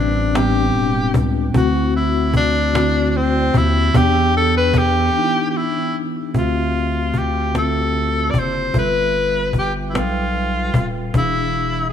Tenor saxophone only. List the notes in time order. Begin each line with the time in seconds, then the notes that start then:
Already playing: D4
0.37 G4
1.57 F#4
1.96 E4
2.37 D4
3.10 D4
3.17 C4
3.57 E4
3.97 G4
4.37 A4
4.57 B4
4.78 G4
5.50 G4
5.57 E4
6.38 F4
7.18 G4
7.58 A4
8.30 D5
8.39 C5
8.79 B4
9.59 G4
9.90 E4
9.98 F4
11.18 E4
11.90 G#4